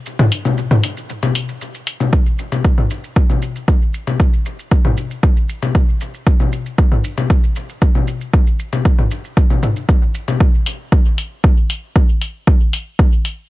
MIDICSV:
0, 0, Header, 1, 2, 480
1, 0, Start_track
1, 0, Tempo, 517241
1, 56, Time_signature, 4, 2, 24, 8
1, 12519, End_track
2, 0, Start_track
2, 0, Title_t, "Drums"
2, 55, Note_on_c, 9, 82, 40
2, 148, Note_off_c, 9, 82, 0
2, 179, Note_on_c, 9, 45, 85
2, 272, Note_off_c, 9, 45, 0
2, 295, Note_on_c, 9, 46, 78
2, 295, Note_on_c, 9, 82, 67
2, 388, Note_off_c, 9, 46, 0
2, 388, Note_off_c, 9, 82, 0
2, 419, Note_on_c, 9, 63, 74
2, 419, Note_on_c, 9, 82, 31
2, 512, Note_off_c, 9, 63, 0
2, 512, Note_off_c, 9, 82, 0
2, 535, Note_on_c, 9, 82, 39
2, 628, Note_off_c, 9, 82, 0
2, 659, Note_on_c, 9, 45, 79
2, 659, Note_on_c, 9, 82, 27
2, 752, Note_off_c, 9, 45, 0
2, 752, Note_off_c, 9, 82, 0
2, 775, Note_on_c, 9, 46, 68
2, 775, Note_on_c, 9, 82, 72
2, 868, Note_off_c, 9, 46, 0
2, 868, Note_off_c, 9, 82, 0
2, 899, Note_on_c, 9, 82, 30
2, 992, Note_off_c, 9, 82, 0
2, 1015, Note_on_c, 9, 82, 38
2, 1108, Note_off_c, 9, 82, 0
2, 1139, Note_on_c, 9, 63, 76
2, 1139, Note_on_c, 9, 82, 28
2, 1232, Note_off_c, 9, 63, 0
2, 1232, Note_off_c, 9, 82, 0
2, 1255, Note_on_c, 9, 46, 73
2, 1255, Note_on_c, 9, 82, 68
2, 1347, Note_off_c, 9, 46, 0
2, 1347, Note_off_c, 9, 82, 0
2, 1379, Note_on_c, 9, 82, 29
2, 1472, Note_off_c, 9, 82, 0
2, 1495, Note_on_c, 9, 82, 39
2, 1588, Note_off_c, 9, 82, 0
2, 1619, Note_on_c, 9, 82, 28
2, 1712, Note_off_c, 9, 82, 0
2, 1735, Note_on_c, 9, 46, 64
2, 1735, Note_on_c, 9, 82, 69
2, 1828, Note_off_c, 9, 46, 0
2, 1828, Note_off_c, 9, 82, 0
2, 1859, Note_on_c, 9, 63, 69
2, 1859, Note_on_c, 9, 82, 29
2, 1952, Note_off_c, 9, 63, 0
2, 1952, Note_off_c, 9, 82, 0
2, 1975, Note_on_c, 9, 36, 105
2, 1975, Note_on_c, 9, 82, 37
2, 2067, Note_off_c, 9, 36, 0
2, 2067, Note_off_c, 9, 82, 0
2, 2099, Note_on_c, 9, 82, 26
2, 2192, Note_off_c, 9, 82, 0
2, 2215, Note_on_c, 9, 82, 66
2, 2307, Note_off_c, 9, 82, 0
2, 2339, Note_on_c, 9, 63, 71
2, 2339, Note_on_c, 9, 82, 30
2, 2432, Note_off_c, 9, 63, 0
2, 2432, Note_off_c, 9, 82, 0
2, 2455, Note_on_c, 9, 36, 96
2, 2455, Note_on_c, 9, 82, 35
2, 2547, Note_off_c, 9, 36, 0
2, 2548, Note_off_c, 9, 82, 0
2, 2579, Note_on_c, 9, 45, 72
2, 2672, Note_off_c, 9, 45, 0
2, 2695, Note_on_c, 9, 82, 65
2, 2788, Note_off_c, 9, 82, 0
2, 2819, Note_on_c, 9, 82, 28
2, 2912, Note_off_c, 9, 82, 0
2, 2935, Note_on_c, 9, 36, 105
2, 2935, Note_on_c, 9, 82, 35
2, 3028, Note_off_c, 9, 36, 0
2, 3028, Note_off_c, 9, 82, 0
2, 3059, Note_on_c, 9, 63, 72
2, 3059, Note_on_c, 9, 82, 26
2, 3152, Note_off_c, 9, 63, 0
2, 3152, Note_off_c, 9, 82, 0
2, 3175, Note_on_c, 9, 82, 61
2, 3268, Note_off_c, 9, 82, 0
2, 3299, Note_on_c, 9, 82, 29
2, 3392, Note_off_c, 9, 82, 0
2, 3415, Note_on_c, 9, 36, 91
2, 3416, Note_on_c, 9, 82, 36
2, 3508, Note_off_c, 9, 36, 0
2, 3508, Note_off_c, 9, 82, 0
2, 3655, Note_on_c, 9, 82, 62
2, 3748, Note_off_c, 9, 82, 0
2, 3779, Note_on_c, 9, 63, 68
2, 3780, Note_on_c, 9, 82, 28
2, 3872, Note_off_c, 9, 63, 0
2, 3873, Note_off_c, 9, 82, 0
2, 3895, Note_on_c, 9, 36, 108
2, 3896, Note_on_c, 9, 82, 40
2, 3988, Note_off_c, 9, 36, 0
2, 3988, Note_off_c, 9, 82, 0
2, 4020, Note_on_c, 9, 82, 26
2, 4113, Note_off_c, 9, 82, 0
2, 4135, Note_on_c, 9, 82, 67
2, 4228, Note_off_c, 9, 82, 0
2, 4260, Note_on_c, 9, 82, 29
2, 4352, Note_off_c, 9, 82, 0
2, 4375, Note_on_c, 9, 36, 102
2, 4376, Note_on_c, 9, 82, 36
2, 4468, Note_off_c, 9, 36, 0
2, 4468, Note_off_c, 9, 82, 0
2, 4499, Note_on_c, 9, 45, 75
2, 4499, Note_on_c, 9, 63, 73
2, 4592, Note_off_c, 9, 45, 0
2, 4592, Note_off_c, 9, 63, 0
2, 4616, Note_on_c, 9, 82, 66
2, 4708, Note_off_c, 9, 82, 0
2, 4740, Note_on_c, 9, 82, 30
2, 4832, Note_off_c, 9, 82, 0
2, 4855, Note_on_c, 9, 36, 114
2, 4855, Note_on_c, 9, 82, 36
2, 4948, Note_off_c, 9, 36, 0
2, 4948, Note_off_c, 9, 82, 0
2, 4979, Note_on_c, 9, 82, 26
2, 5072, Note_off_c, 9, 82, 0
2, 5095, Note_on_c, 9, 82, 65
2, 5188, Note_off_c, 9, 82, 0
2, 5219, Note_on_c, 9, 82, 28
2, 5220, Note_on_c, 9, 63, 78
2, 5312, Note_off_c, 9, 63, 0
2, 5312, Note_off_c, 9, 82, 0
2, 5335, Note_on_c, 9, 36, 96
2, 5336, Note_on_c, 9, 82, 35
2, 5428, Note_off_c, 9, 36, 0
2, 5428, Note_off_c, 9, 82, 0
2, 5575, Note_on_c, 9, 82, 64
2, 5668, Note_off_c, 9, 82, 0
2, 5699, Note_on_c, 9, 82, 30
2, 5792, Note_off_c, 9, 82, 0
2, 5815, Note_on_c, 9, 36, 115
2, 5815, Note_on_c, 9, 82, 36
2, 5908, Note_off_c, 9, 36, 0
2, 5908, Note_off_c, 9, 82, 0
2, 5939, Note_on_c, 9, 63, 74
2, 5939, Note_on_c, 9, 82, 25
2, 6032, Note_off_c, 9, 63, 0
2, 6032, Note_off_c, 9, 82, 0
2, 6055, Note_on_c, 9, 82, 64
2, 6148, Note_off_c, 9, 82, 0
2, 6179, Note_on_c, 9, 82, 30
2, 6272, Note_off_c, 9, 82, 0
2, 6295, Note_on_c, 9, 36, 105
2, 6295, Note_on_c, 9, 82, 36
2, 6388, Note_off_c, 9, 36, 0
2, 6388, Note_off_c, 9, 82, 0
2, 6419, Note_on_c, 9, 45, 72
2, 6512, Note_off_c, 9, 45, 0
2, 6535, Note_on_c, 9, 82, 67
2, 6628, Note_off_c, 9, 82, 0
2, 6659, Note_on_c, 9, 63, 78
2, 6659, Note_on_c, 9, 82, 28
2, 6752, Note_off_c, 9, 63, 0
2, 6752, Note_off_c, 9, 82, 0
2, 6775, Note_on_c, 9, 36, 113
2, 6775, Note_on_c, 9, 82, 36
2, 6867, Note_off_c, 9, 36, 0
2, 6867, Note_off_c, 9, 82, 0
2, 6899, Note_on_c, 9, 82, 25
2, 6992, Note_off_c, 9, 82, 0
2, 7014, Note_on_c, 9, 82, 61
2, 7107, Note_off_c, 9, 82, 0
2, 7139, Note_on_c, 9, 82, 28
2, 7231, Note_off_c, 9, 82, 0
2, 7255, Note_on_c, 9, 36, 92
2, 7255, Note_on_c, 9, 82, 36
2, 7347, Note_off_c, 9, 36, 0
2, 7347, Note_off_c, 9, 82, 0
2, 7379, Note_on_c, 9, 63, 72
2, 7472, Note_off_c, 9, 63, 0
2, 7494, Note_on_c, 9, 82, 59
2, 7587, Note_off_c, 9, 82, 0
2, 7619, Note_on_c, 9, 82, 29
2, 7711, Note_off_c, 9, 82, 0
2, 7735, Note_on_c, 9, 36, 113
2, 7735, Note_on_c, 9, 82, 35
2, 7827, Note_off_c, 9, 82, 0
2, 7828, Note_off_c, 9, 36, 0
2, 7859, Note_on_c, 9, 82, 25
2, 7952, Note_off_c, 9, 82, 0
2, 7974, Note_on_c, 9, 82, 65
2, 8067, Note_off_c, 9, 82, 0
2, 8099, Note_on_c, 9, 63, 73
2, 8099, Note_on_c, 9, 82, 28
2, 8192, Note_off_c, 9, 63, 0
2, 8192, Note_off_c, 9, 82, 0
2, 8215, Note_on_c, 9, 36, 102
2, 8215, Note_on_c, 9, 82, 36
2, 8308, Note_off_c, 9, 36, 0
2, 8308, Note_off_c, 9, 82, 0
2, 8339, Note_on_c, 9, 45, 68
2, 8432, Note_off_c, 9, 45, 0
2, 8455, Note_on_c, 9, 82, 65
2, 8548, Note_off_c, 9, 82, 0
2, 8579, Note_on_c, 9, 82, 28
2, 8672, Note_off_c, 9, 82, 0
2, 8695, Note_on_c, 9, 36, 113
2, 8695, Note_on_c, 9, 82, 34
2, 8788, Note_off_c, 9, 36, 0
2, 8788, Note_off_c, 9, 82, 0
2, 8819, Note_on_c, 9, 63, 72
2, 8819, Note_on_c, 9, 82, 25
2, 8912, Note_off_c, 9, 63, 0
2, 8912, Note_off_c, 9, 82, 0
2, 8935, Note_on_c, 9, 45, 74
2, 8935, Note_on_c, 9, 82, 58
2, 9028, Note_off_c, 9, 45, 0
2, 9028, Note_off_c, 9, 82, 0
2, 9059, Note_on_c, 9, 82, 28
2, 9152, Note_off_c, 9, 82, 0
2, 9175, Note_on_c, 9, 36, 93
2, 9175, Note_on_c, 9, 82, 35
2, 9268, Note_off_c, 9, 36, 0
2, 9268, Note_off_c, 9, 82, 0
2, 9415, Note_on_c, 9, 82, 59
2, 9508, Note_off_c, 9, 82, 0
2, 9539, Note_on_c, 9, 82, 26
2, 9540, Note_on_c, 9, 63, 73
2, 9632, Note_off_c, 9, 82, 0
2, 9633, Note_off_c, 9, 63, 0
2, 9655, Note_on_c, 9, 36, 109
2, 9748, Note_off_c, 9, 36, 0
2, 9895, Note_on_c, 9, 46, 80
2, 9988, Note_off_c, 9, 46, 0
2, 10135, Note_on_c, 9, 36, 99
2, 10228, Note_off_c, 9, 36, 0
2, 10376, Note_on_c, 9, 46, 71
2, 10468, Note_off_c, 9, 46, 0
2, 10615, Note_on_c, 9, 36, 114
2, 10708, Note_off_c, 9, 36, 0
2, 10856, Note_on_c, 9, 46, 75
2, 10949, Note_off_c, 9, 46, 0
2, 11095, Note_on_c, 9, 36, 98
2, 11188, Note_off_c, 9, 36, 0
2, 11335, Note_on_c, 9, 46, 66
2, 11428, Note_off_c, 9, 46, 0
2, 11575, Note_on_c, 9, 36, 118
2, 11668, Note_off_c, 9, 36, 0
2, 11816, Note_on_c, 9, 46, 85
2, 11908, Note_off_c, 9, 46, 0
2, 12055, Note_on_c, 9, 36, 109
2, 12148, Note_off_c, 9, 36, 0
2, 12296, Note_on_c, 9, 46, 69
2, 12388, Note_off_c, 9, 46, 0
2, 12519, End_track
0, 0, End_of_file